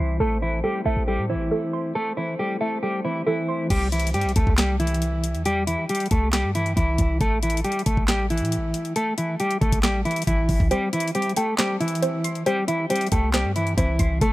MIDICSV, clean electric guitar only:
0, 0, Header, 1, 2, 480
1, 0, Start_track
1, 0, Key_signature, 0, "major"
1, 0, Tempo, 437956
1, 219, Time_signature, 4, 2, 24, 8
1, 15703, End_track
2, 0, Start_track
2, 0, Title_t, "Clean electric guitar"
2, 0, Program_c, 0, 27
2, 0, Note_on_c, 0, 52, 59
2, 0, Note_on_c, 0, 64, 78
2, 189, Note_off_c, 0, 64, 0
2, 193, Note_off_c, 0, 52, 0
2, 223, Note_on_c, 0, 69, 96
2, 232, Note_on_c, 0, 57, 76
2, 403, Note_off_c, 0, 69, 0
2, 408, Note_off_c, 0, 57, 0
2, 464, Note_on_c, 0, 64, 84
2, 473, Note_on_c, 0, 52, 59
2, 644, Note_off_c, 0, 64, 0
2, 649, Note_off_c, 0, 52, 0
2, 698, Note_on_c, 0, 67, 89
2, 707, Note_on_c, 0, 55, 67
2, 880, Note_off_c, 0, 67, 0
2, 885, Note_off_c, 0, 55, 0
2, 936, Note_on_c, 0, 69, 73
2, 945, Note_on_c, 0, 57, 64
2, 1119, Note_off_c, 0, 69, 0
2, 1124, Note_off_c, 0, 57, 0
2, 1183, Note_on_c, 0, 67, 86
2, 1192, Note_on_c, 0, 55, 68
2, 1363, Note_off_c, 0, 67, 0
2, 1368, Note_off_c, 0, 55, 0
2, 1420, Note_on_c, 0, 64, 77
2, 1429, Note_on_c, 0, 52, 55
2, 2096, Note_off_c, 0, 64, 0
2, 2101, Note_off_c, 0, 52, 0
2, 2140, Note_on_c, 0, 69, 101
2, 2149, Note_on_c, 0, 57, 80
2, 2321, Note_off_c, 0, 69, 0
2, 2327, Note_off_c, 0, 57, 0
2, 2379, Note_on_c, 0, 64, 73
2, 2388, Note_on_c, 0, 52, 56
2, 2560, Note_off_c, 0, 64, 0
2, 2566, Note_off_c, 0, 52, 0
2, 2623, Note_on_c, 0, 67, 84
2, 2632, Note_on_c, 0, 55, 64
2, 2803, Note_off_c, 0, 67, 0
2, 2809, Note_off_c, 0, 55, 0
2, 2857, Note_on_c, 0, 69, 77
2, 2866, Note_on_c, 0, 57, 57
2, 3039, Note_off_c, 0, 69, 0
2, 3044, Note_off_c, 0, 57, 0
2, 3099, Note_on_c, 0, 67, 82
2, 3107, Note_on_c, 0, 55, 65
2, 3280, Note_off_c, 0, 67, 0
2, 3286, Note_off_c, 0, 55, 0
2, 3338, Note_on_c, 0, 64, 78
2, 3347, Note_on_c, 0, 52, 58
2, 3520, Note_off_c, 0, 64, 0
2, 3525, Note_off_c, 0, 52, 0
2, 3579, Note_on_c, 0, 64, 77
2, 3588, Note_on_c, 0, 52, 62
2, 4030, Note_off_c, 0, 64, 0
2, 4035, Note_off_c, 0, 52, 0
2, 4060, Note_on_c, 0, 67, 96
2, 4069, Note_on_c, 0, 55, 84
2, 4241, Note_off_c, 0, 67, 0
2, 4247, Note_off_c, 0, 55, 0
2, 4300, Note_on_c, 0, 64, 86
2, 4309, Note_on_c, 0, 52, 64
2, 4481, Note_off_c, 0, 64, 0
2, 4486, Note_off_c, 0, 52, 0
2, 4540, Note_on_c, 0, 67, 88
2, 4549, Note_on_c, 0, 55, 66
2, 4721, Note_off_c, 0, 67, 0
2, 4726, Note_off_c, 0, 55, 0
2, 4780, Note_on_c, 0, 69, 72
2, 4789, Note_on_c, 0, 57, 62
2, 4961, Note_off_c, 0, 69, 0
2, 4966, Note_off_c, 0, 57, 0
2, 5022, Note_on_c, 0, 67, 80
2, 5031, Note_on_c, 0, 55, 67
2, 5202, Note_off_c, 0, 67, 0
2, 5208, Note_off_c, 0, 55, 0
2, 5258, Note_on_c, 0, 64, 86
2, 5266, Note_on_c, 0, 52, 65
2, 5935, Note_off_c, 0, 64, 0
2, 5940, Note_off_c, 0, 52, 0
2, 5981, Note_on_c, 0, 67, 108
2, 5990, Note_on_c, 0, 55, 81
2, 6162, Note_off_c, 0, 67, 0
2, 6167, Note_off_c, 0, 55, 0
2, 6216, Note_on_c, 0, 64, 79
2, 6225, Note_on_c, 0, 52, 54
2, 6398, Note_off_c, 0, 64, 0
2, 6404, Note_off_c, 0, 52, 0
2, 6462, Note_on_c, 0, 67, 87
2, 6470, Note_on_c, 0, 55, 61
2, 6642, Note_off_c, 0, 67, 0
2, 6647, Note_off_c, 0, 55, 0
2, 6701, Note_on_c, 0, 69, 82
2, 6709, Note_on_c, 0, 57, 67
2, 6881, Note_off_c, 0, 69, 0
2, 6887, Note_off_c, 0, 57, 0
2, 6939, Note_on_c, 0, 67, 88
2, 6948, Note_on_c, 0, 55, 68
2, 7121, Note_off_c, 0, 67, 0
2, 7126, Note_off_c, 0, 55, 0
2, 7181, Note_on_c, 0, 64, 78
2, 7190, Note_on_c, 0, 52, 60
2, 7362, Note_off_c, 0, 64, 0
2, 7367, Note_off_c, 0, 52, 0
2, 7416, Note_on_c, 0, 64, 85
2, 7425, Note_on_c, 0, 52, 64
2, 7869, Note_off_c, 0, 64, 0
2, 7873, Note_off_c, 0, 52, 0
2, 7902, Note_on_c, 0, 69, 103
2, 7910, Note_on_c, 0, 57, 78
2, 8082, Note_off_c, 0, 69, 0
2, 8087, Note_off_c, 0, 57, 0
2, 8143, Note_on_c, 0, 64, 88
2, 8152, Note_on_c, 0, 52, 63
2, 8323, Note_off_c, 0, 64, 0
2, 8329, Note_off_c, 0, 52, 0
2, 8378, Note_on_c, 0, 67, 92
2, 8387, Note_on_c, 0, 55, 65
2, 8560, Note_off_c, 0, 67, 0
2, 8566, Note_off_c, 0, 55, 0
2, 8617, Note_on_c, 0, 69, 75
2, 8626, Note_on_c, 0, 57, 66
2, 8799, Note_off_c, 0, 69, 0
2, 8804, Note_off_c, 0, 57, 0
2, 8864, Note_on_c, 0, 67, 86
2, 8873, Note_on_c, 0, 55, 73
2, 9043, Note_off_c, 0, 67, 0
2, 9049, Note_off_c, 0, 55, 0
2, 9101, Note_on_c, 0, 64, 80
2, 9110, Note_on_c, 0, 52, 58
2, 9777, Note_off_c, 0, 64, 0
2, 9781, Note_off_c, 0, 52, 0
2, 9820, Note_on_c, 0, 69, 105
2, 9829, Note_on_c, 0, 57, 83
2, 10001, Note_off_c, 0, 69, 0
2, 10007, Note_off_c, 0, 57, 0
2, 10060, Note_on_c, 0, 64, 76
2, 10068, Note_on_c, 0, 52, 58
2, 10241, Note_off_c, 0, 64, 0
2, 10246, Note_off_c, 0, 52, 0
2, 10302, Note_on_c, 0, 67, 86
2, 10311, Note_on_c, 0, 55, 64
2, 10482, Note_off_c, 0, 67, 0
2, 10488, Note_off_c, 0, 55, 0
2, 10535, Note_on_c, 0, 69, 81
2, 10544, Note_on_c, 0, 57, 58
2, 10718, Note_off_c, 0, 69, 0
2, 10723, Note_off_c, 0, 57, 0
2, 10777, Note_on_c, 0, 67, 84
2, 10787, Note_on_c, 0, 55, 65
2, 10959, Note_off_c, 0, 67, 0
2, 10965, Note_off_c, 0, 55, 0
2, 11018, Note_on_c, 0, 64, 81
2, 11026, Note_on_c, 0, 52, 62
2, 11200, Note_off_c, 0, 64, 0
2, 11205, Note_off_c, 0, 52, 0
2, 11259, Note_on_c, 0, 64, 78
2, 11267, Note_on_c, 0, 52, 62
2, 11710, Note_off_c, 0, 64, 0
2, 11714, Note_off_c, 0, 52, 0
2, 11740, Note_on_c, 0, 67, 93
2, 11749, Note_on_c, 0, 55, 84
2, 11921, Note_off_c, 0, 67, 0
2, 11927, Note_off_c, 0, 55, 0
2, 11980, Note_on_c, 0, 64, 87
2, 11988, Note_on_c, 0, 52, 66
2, 12161, Note_off_c, 0, 64, 0
2, 12166, Note_off_c, 0, 52, 0
2, 12220, Note_on_c, 0, 67, 87
2, 12229, Note_on_c, 0, 55, 67
2, 12401, Note_off_c, 0, 67, 0
2, 12406, Note_off_c, 0, 55, 0
2, 12460, Note_on_c, 0, 69, 72
2, 12468, Note_on_c, 0, 57, 60
2, 12641, Note_off_c, 0, 69, 0
2, 12646, Note_off_c, 0, 57, 0
2, 12702, Note_on_c, 0, 67, 80
2, 12711, Note_on_c, 0, 55, 66
2, 12882, Note_off_c, 0, 67, 0
2, 12888, Note_off_c, 0, 55, 0
2, 12938, Note_on_c, 0, 64, 86
2, 12947, Note_on_c, 0, 52, 63
2, 13615, Note_off_c, 0, 64, 0
2, 13620, Note_off_c, 0, 52, 0
2, 13662, Note_on_c, 0, 67, 105
2, 13670, Note_on_c, 0, 55, 81
2, 13842, Note_off_c, 0, 67, 0
2, 13847, Note_off_c, 0, 55, 0
2, 13897, Note_on_c, 0, 64, 82
2, 13905, Note_on_c, 0, 52, 56
2, 14079, Note_off_c, 0, 64, 0
2, 14084, Note_off_c, 0, 52, 0
2, 14142, Note_on_c, 0, 67, 87
2, 14151, Note_on_c, 0, 55, 62
2, 14322, Note_off_c, 0, 67, 0
2, 14328, Note_off_c, 0, 55, 0
2, 14380, Note_on_c, 0, 69, 78
2, 14389, Note_on_c, 0, 57, 66
2, 14561, Note_off_c, 0, 69, 0
2, 14566, Note_off_c, 0, 57, 0
2, 14620, Note_on_c, 0, 67, 90
2, 14629, Note_on_c, 0, 55, 68
2, 14801, Note_off_c, 0, 67, 0
2, 14807, Note_off_c, 0, 55, 0
2, 14863, Note_on_c, 0, 64, 77
2, 14872, Note_on_c, 0, 52, 60
2, 15043, Note_off_c, 0, 64, 0
2, 15048, Note_off_c, 0, 52, 0
2, 15097, Note_on_c, 0, 64, 84
2, 15106, Note_on_c, 0, 52, 62
2, 15549, Note_off_c, 0, 64, 0
2, 15554, Note_off_c, 0, 52, 0
2, 15583, Note_on_c, 0, 69, 98
2, 15591, Note_on_c, 0, 57, 77
2, 15703, Note_off_c, 0, 57, 0
2, 15703, Note_off_c, 0, 69, 0
2, 15703, End_track
0, 0, End_of_file